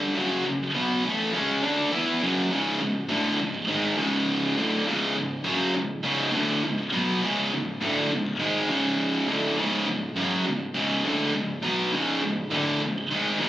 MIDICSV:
0, 0, Header, 1, 2, 480
1, 0, Start_track
1, 0, Tempo, 588235
1, 125, Time_signature, 4, 2, 24, 8
1, 11007, End_track
2, 0, Start_track
2, 0, Title_t, "Distorted electric guitar"
2, 0, Program_c, 0, 30
2, 0, Note_on_c, 0, 43, 104
2, 0, Note_on_c, 0, 50, 100
2, 0, Note_on_c, 0, 55, 102
2, 117, Note_off_c, 0, 43, 0
2, 121, Note_off_c, 0, 50, 0
2, 122, Note_off_c, 0, 55, 0
2, 125, Note_on_c, 0, 42, 105
2, 132, Note_on_c, 0, 49, 98
2, 136, Note_on_c, 0, 54, 98
2, 358, Note_off_c, 0, 42, 0
2, 358, Note_off_c, 0, 49, 0
2, 364, Note_off_c, 0, 54, 0
2, 368, Note_on_c, 0, 42, 71
2, 368, Note_on_c, 0, 49, 76
2, 559, Note_off_c, 0, 42, 0
2, 559, Note_off_c, 0, 49, 0
2, 608, Note_on_c, 0, 47, 92
2, 612, Note_on_c, 0, 54, 96
2, 618, Note_on_c, 0, 59, 107
2, 840, Note_off_c, 0, 47, 0
2, 842, Note_off_c, 0, 54, 0
2, 845, Note_off_c, 0, 59, 0
2, 855, Note_on_c, 0, 45, 82
2, 859, Note_on_c, 0, 52, 91
2, 867, Note_on_c, 0, 57, 100
2, 1082, Note_off_c, 0, 52, 0
2, 1084, Note_off_c, 0, 45, 0
2, 1085, Note_on_c, 0, 49, 85
2, 1088, Note_off_c, 0, 57, 0
2, 1091, Note_on_c, 0, 56, 94
2, 1096, Note_on_c, 0, 61, 99
2, 1319, Note_off_c, 0, 49, 0
2, 1322, Note_off_c, 0, 56, 0
2, 1325, Note_off_c, 0, 61, 0
2, 1325, Note_on_c, 0, 50, 101
2, 1333, Note_on_c, 0, 57, 105
2, 1333, Note_on_c, 0, 62, 112
2, 1559, Note_off_c, 0, 50, 0
2, 1563, Note_off_c, 0, 62, 0
2, 1564, Note_off_c, 0, 57, 0
2, 1565, Note_on_c, 0, 52, 104
2, 1570, Note_on_c, 0, 59, 97
2, 1574, Note_on_c, 0, 64, 110
2, 1800, Note_off_c, 0, 52, 0
2, 1802, Note_off_c, 0, 59, 0
2, 1804, Note_off_c, 0, 64, 0
2, 1811, Note_on_c, 0, 42, 86
2, 1822, Note_on_c, 0, 49, 103
2, 1824, Note_on_c, 0, 54, 105
2, 2042, Note_off_c, 0, 42, 0
2, 2047, Note_on_c, 0, 37, 82
2, 2048, Note_off_c, 0, 49, 0
2, 2049, Note_off_c, 0, 54, 0
2, 2054, Note_on_c, 0, 44, 90
2, 2060, Note_on_c, 0, 49, 96
2, 2272, Note_off_c, 0, 37, 0
2, 2279, Note_off_c, 0, 44, 0
2, 2282, Note_on_c, 0, 37, 64
2, 2287, Note_off_c, 0, 49, 0
2, 2289, Note_on_c, 0, 44, 76
2, 2478, Note_off_c, 0, 37, 0
2, 2481, Note_off_c, 0, 44, 0
2, 2520, Note_on_c, 0, 38, 96
2, 2524, Note_on_c, 0, 45, 93
2, 2529, Note_on_c, 0, 50, 102
2, 2758, Note_off_c, 0, 38, 0
2, 2760, Note_off_c, 0, 45, 0
2, 2762, Note_off_c, 0, 50, 0
2, 2766, Note_on_c, 0, 37, 54
2, 2771, Note_on_c, 0, 44, 66
2, 2960, Note_off_c, 0, 37, 0
2, 2962, Note_off_c, 0, 44, 0
2, 2995, Note_on_c, 0, 44, 84
2, 3008, Note_on_c, 0, 51, 86
2, 3008, Note_on_c, 0, 56, 87
2, 3235, Note_off_c, 0, 44, 0
2, 3238, Note_on_c, 0, 37, 92
2, 3242, Note_off_c, 0, 51, 0
2, 3242, Note_off_c, 0, 56, 0
2, 3246, Note_on_c, 0, 44, 107
2, 3250, Note_on_c, 0, 49, 91
2, 3717, Note_off_c, 0, 37, 0
2, 3721, Note_off_c, 0, 44, 0
2, 3723, Note_off_c, 0, 49, 0
2, 3727, Note_on_c, 0, 38, 89
2, 3731, Note_on_c, 0, 45, 107
2, 3736, Note_on_c, 0, 50, 101
2, 3956, Note_off_c, 0, 38, 0
2, 3960, Note_on_c, 0, 37, 88
2, 3964, Note_off_c, 0, 45, 0
2, 3966, Note_off_c, 0, 50, 0
2, 3968, Note_on_c, 0, 44, 87
2, 3976, Note_on_c, 0, 49, 93
2, 4196, Note_off_c, 0, 37, 0
2, 4202, Note_off_c, 0, 44, 0
2, 4205, Note_on_c, 0, 37, 64
2, 4206, Note_off_c, 0, 49, 0
2, 4211, Note_on_c, 0, 44, 69
2, 4400, Note_off_c, 0, 37, 0
2, 4403, Note_off_c, 0, 44, 0
2, 4439, Note_on_c, 0, 42, 85
2, 4449, Note_on_c, 0, 49, 96
2, 4449, Note_on_c, 0, 54, 104
2, 4678, Note_off_c, 0, 42, 0
2, 4682, Note_off_c, 0, 49, 0
2, 4683, Note_off_c, 0, 54, 0
2, 4693, Note_on_c, 0, 44, 56
2, 4694, Note_on_c, 0, 37, 56
2, 4884, Note_off_c, 0, 37, 0
2, 4884, Note_off_c, 0, 44, 0
2, 4927, Note_on_c, 0, 37, 87
2, 4934, Note_on_c, 0, 44, 77
2, 4941, Note_on_c, 0, 49, 93
2, 5154, Note_off_c, 0, 37, 0
2, 5158, Note_on_c, 0, 38, 95
2, 5161, Note_off_c, 0, 44, 0
2, 5164, Note_on_c, 0, 45, 100
2, 5166, Note_off_c, 0, 49, 0
2, 5169, Note_on_c, 0, 50, 102
2, 5397, Note_off_c, 0, 38, 0
2, 5400, Note_off_c, 0, 45, 0
2, 5403, Note_off_c, 0, 50, 0
2, 5415, Note_on_c, 0, 37, 69
2, 5418, Note_on_c, 0, 44, 71
2, 5605, Note_off_c, 0, 37, 0
2, 5606, Note_off_c, 0, 44, 0
2, 5652, Note_on_c, 0, 47, 97
2, 5655, Note_on_c, 0, 54, 109
2, 5663, Note_on_c, 0, 59, 106
2, 5884, Note_off_c, 0, 47, 0
2, 5885, Note_off_c, 0, 54, 0
2, 5890, Note_off_c, 0, 59, 0
2, 5894, Note_on_c, 0, 37, 81
2, 5901, Note_on_c, 0, 44, 89
2, 5907, Note_on_c, 0, 49, 94
2, 6125, Note_off_c, 0, 37, 0
2, 6129, Note_off_c, 0, 44, 0
2, 6132, Note_off_c, 0, 49, 0
2, 6143, Note_on_c, 0, 37, 61
2, 6148, Note_on_c, 0, 44, 73
2, 6329, Note_off_c, 0, 37, 0
2, 6331, Note_off_c, 0, 44, 0
2, 6371, Note_on_c, 0, 38, 91
2, 6381, Note_on_c, 0, 45, 98
2, 6385, Note_on_c, 0, 50, 90
2, 6604, Note_off_c, 0, 38, 0
2, 6608, Note_off_c, 0, 45, 0
2, 6610, Note_off_c, 0, 50, 0
2, 6615, Note_on_c, 0, 37, 60
2, 6616, Note_on_c, 0, 44, 62
2, 6804, Note_off_c, 0, 37, 0
2, 6805, Note_off_c, 0, 44, 0
2, 6848, Note_on_c, 0, 44, 81
2, 6853, Note_on_c, 0, 51, 89
2, 6863, Note_on_c, 0, 56, 94
2, 7082, Note_off_c, 0, 44, 0
2, 7084, Note_off_c, 0, 51, 0
2, 7089, Note_off_c, 0, 56, 0
2, 7092, Note_on_c, 0, 37, 93
2, 7098, Note_on_c, 0, 44, 92
2, 7101, Note_on_c, 0, 49, 110
2, 7563, Note_off_c, 0, 37, 0
2, 7566, Note_off_c, 0, 44, 0
2, 7567, Note_on_c, 0, 38, 96
2, 7568, Note_off_c, 0, 49, 0
2, 7571, Note_on_c, 0, 45, 97
2, 7577, Note_on_c, 0, 50, 102
2, 7801, Note_off_c, 0, 38, 0
2, 7803, Note_off_c, 0, 45, 0
2, 7805, Note_on_c, 0, 37, 100
2, 7806, Note_off_c, 0, 50, 0
2, 7817, Note_on_c, 0, 44, 96
2, 7819, Note_on_c, 0, 49, 102
2, 8040, Note_off_c, 0, 37, 0
2, 8046, Note_off_c, 0, 44, 0
2, 8046, Note_off_c, 0, 49, 0
2, 8055, Note_on_c, 0, 37, 63
2, 8059, Note_on_c, 0, 44, 67
2, 8244, Note_off_c, 0, 37, 0
2, 8246, Note_off_c, 0, 44, 0
2, 8294, Note_on_c, 0, 42, 100
2, 8301, Note_on_c, 0, 49, 96
2, 8307, Note_on_c, 0, 54, 101
2, 8524, Note_off_c, 0, 42, 0
2, 8527, Note_off_c, 0, 49, 0
2, 8530, Note_off_c, 0, 54, 0
2, 8538, Note_on_c, 0, 37, 65
2, 8539, Note_on_c, 0, 44, 69
2, 8725, Note_off_c, 0, 37, 0
2, 8726, Note_off_c, 0, 44, 0
2, 8768, Note_on_c, 0, 37, 79
2, 8772, Note_on_c, 0, 44, 85
2, 8776, Note_on_c, 0, 49, 96
2, 9001, Note_off_c, 0, 37, 0
2, 9003, Note_off_c, 0, 44, 0
2, 9005, Note_off_c, 0, 49, 0
2, 9010, Note_on_c, 0, 38, 93
2, 9021, Note_on_c, 0, 45, 105
2, 9026, Note_on_c, 0, 50, 97
2, 9242, Note_off_c, 0, 38, 0
2, 9247, Note_off_c, 0, 45, 0
2, 9249, Note_off_c, 0, 50, 0
2, 9253, Note_on_c, 0, 37, 71
2, 9254, Note_on_c, 0, 44, 75
2, 9443, Note_off_c, 0, 37, 0
2, 9443, Note_off_c, 0, 44, 0
2, 9485, Note_on_c, 0, 47, 89
2, 9491, Note_on_c, 0, 54, 103
2, 9497, Note_on_c, 0, 59, 116
2, 9719, Note_off_c, 0, 47, 0
2, 9722, Note_off_c, 0, 54, 0
2, 9725, Note_off_c, 0, 59, 0
2, 9730, Note_on_c, 0, 37, 84
2, 9739, Note_on_c, 0, 44, 88
2, 9741, Note_on_c, 0, 49, 79
2, 9961, Note_off_c, 0, 37, 0
2, 9966, Note_off_c, 0, 44, 0
2, 9967, Note_off_c, 0, 49, 0
2, 9971, Note_on_c, 0, 37, 66
2, 9975, Note_on_c, 0, 44, 67
2, 10161, Note_off_c, 0, 37, 0
2, 10163, Note_off_c, 0, 44, 0
2, 10210, Note_on_c, 0, 38, 100
2, 10220, Note_on_c, 0, 45, 102
2, 10223, Note_on_c, 0, 50, 115
2, 10441, Note_off_c, 0, 38, 0
2, 10446, Note_off_c, 0, 45, 0
2, 10448, Note_off_c, 0, 50, 0
2, 10453, Note_on_c, 0, 37, 61
2, 10458, Note_on_c, 0, 44, 63
2, 10642, Note_off_c, 0, 37, 0
2, 10644, Note_off_c, 0, 44, 0
2, 10698, Note_on_c, 0, 44, 81
2, 10700, Note_on_c, 0, 51, 100
2, 10706, Note_on_c, 0, 56, 87
2, 10925, Note_off_c, 0, 44, 0
2, 10926, Note_off_c, 0, 51, 0
2, 10929, Note_off_c, 0, 56, 0
2, 10930, Note_on_c, 0, 37, 101
2, 10933, Note_on_c, 0, 44, 101
2, 10942, Note_on_c, 0, 49, 115
2, 11007, Note_off_c, 0, 37, 0
2, 11007, Note_off_c, 0, 44, 0
2, 11007, Note_off_c, 0, 49, 0
2, 11007, End_track
0, 0, End_of_file